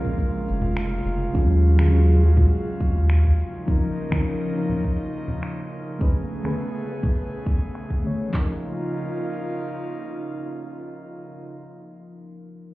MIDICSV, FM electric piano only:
0, 0, Header, 1, 2, 480
1, 0, Start_track
1, 0, Key_signature, -5, "major"
1, 0, Tempo, 582524
1, 1107, Time_signature, 4, 2, 24, 8
1, 10498, End_track
2, 0, Start_track
2, 0, Title_t, "FM electric piano"
2, 0, Program_c, 0, 5
2, 0, Control_c, 0, 64, 127
2, 0, Note_on_c, 0, 56, 73
2, 0, Note_on_c, 0, 61, 67
2, 0, Note_on_c, 0, 65, 66
2, 0, Note_on_c, 0, 70, 77
2, 1065, Note_off_c, 0, 56, 0
2, 1074, Note_off_c, 0, 61, 0
2, 1083, Note_off_c, 0, 65, 0
2, 1092, Note_off_c, 0, 70, 0
2, 1095, Note_on_c, 0, 54, 75
2, 1103, Note_on_c, 0, 61, 78
2, 1112, Note_on_c, 0, 65, 75
2, 1118, Control_c, 0, 64, 0
2, 1123, Note_on_c, 0, 68, 89
2, 1282, Control_c, 0, 64, 127
2, 1435, Note_off_c, 0, 54, 0
2, 1438, Note_off_c, 0, 61, 0
2, 1443, Note_off_c, 0, 65, 0
2, 1449, Note_off_c, 0, 68, 0
2, 1458, Note_on_c, 0, 54, 93
2, 1467, Note_on_c, 0, 61, 78
2, 1477, Note_on_c, 0, 65, 83
2, 1488, Note_on_c, 0, 68, 103
2, 1790, Note_off_c, 0, 54, 0
2, 1797, Note_off_c, 0, 61, 0
2, 1799, Note_on_c, 0, 54, 71
2, 1802, Note_off_c, 0, 65, 0
2, 1808, Note_off_c, 0, 68, 0
2, 1818, Note_on_c, 0, 61, 63
2, 1839, Note_on_c, 0, 65, 67
2, 1856, Note_on_c, 0, 68, 76
2, 2759, Note_off_c, 0, 54, 0
2, 2768, Note_off_c, 0, 61, 0
2, 2779, Note_off_c, 0, 65, 0
2, 2788, Note_off_c, 0, 68, 0
2, 2797, Control_c, 0, 64, 0
2, 2932, Control_c, 0, 64, 127
2, 3017, Note_on_c, 0, 53, 79
2, 3026, Note_on_c, 0, 61, 73
2, 3035, Note_on_c, 0, 63, 69
2, 3046, Note_on_c, 0, 70, 89
2, 3356, Note_off_c, 0, 53, 0
2, 3360, Note_off_c, 0, 61, 0
2, 3364, Note_off_c, 0, 63, 0
2, 3370, Note_off_c, 0, 70, 0
2, 3381, Note_on_c, 0, 53, 87
2, 3390, Note_on_c, 0, 61, 84
2, 3400, Note_on_c, 0, 63, 83
2, 3411, Note_on_c, 0, 70, 105
2, 3712, Note_off_c, 0, 53, 0
2, 3719, Note_off_c, 0, 61, 0
2, 3722, Note_on_c, 0, 53, 69
2, 3724, Note_off_c, 0, 63, 0
2, 3729, Note_off_c, 0, 70, 0
2, 3742, Note_on_c, 0, 61, 67
2, 3760, Note_on_c, 0, 63, 63
2, 3780, Note_on_c, 0, 70, 77
2, 4906, Note_off_c, 0, 53, 0
2, 4916, Note_off_c, 0, 61, 0
2, 4925, Note_off_c, 0, 63, 0
2, 4935, Note_off_c, 0, 70, 0
2, 4936, Note_on_c, 0, 57, 77
2, 4947, Note_on_c, 0, 61, 69
2, 4957, Note_on_c, 0, 68, 73
2, 4959, Control_c, 0, 64, 0
2, 4965, Note_on_c, 0, 71, 85
2, 5124, Control_c, 0, 64, 127
2, 5275, Note_off_c, 0, 57, 0
2, 5281, Note_off_c, 0, 61, 0
2, 5285, Note_off_c, 0, 68, 0
2, 5289, Note_off_c, 0, 71, 0
2, 5301, Note_on_c, 0, 57, 81
2, 5309, Note_on_c, 0, 61, 81
2, 5319, Note_on_c, 0, 68, 77
2, 5329, Note_on_c, 0, 71, 96
2, 5631, Note_off_c, 0, 57, 0
2, 5638, Note_off_c, 0, 61, 0
2, 5641, Note_on_c, 0, 57, 69
2, 5643, Note_off_c, 0, 68, 0
2, 5648, Note_off_c, 0, 71, 0
2, 5662, Note_on_c, 0, 61, 60
2, 5681, Note_on_c, 0, 68, 64
2, 5699, Note_on_c, 0, 71, 73
2, 6590, Note_off_c, 0, 57, 0
2, 6601, Note_off_c, 0, 61, 0
2, 6611, Note_off_c, 0, 68, 0
2, 6617, Note_on_c, 0, 57, 74
2, 6620, Note_off_c, 0, 71, 0
2, 6628, Note_on_c, 0, 61, 65
2, 6637, Note_on_c, 0, 68, 64
2, 6648, Note_on_c, 0, 73, 76
2, 6827, Note_on_c, 0, 53, 73
2, 6834, Note_off_c, 0, 57, 0
2, 6840, Note_off_c, 0, 61, 0
2, 6844, Note_off_c, 0, 68, 0
2, 6849, Note_off_c, 0, 73, 0
2, 6856, Note_on_c, 0, 61, 63
2, 6877, Control_c, 0, 64, 0
2, 6885, Note_on_c, 0, 63, 67
2, 6913, Note_on_c, 0, 70, 83
2, 7011, Control_c, 0, 64, 127
2, 9970, Note_off_c, 0, 53, 0
2, 9984, Note_off_c, 0, 61, 0
2, 9999, Note_off_c, 0, 63, 0
2, 10013, Note_off_c, 0, 70, 0
2, 10498, End_track
0, 0, End_of_file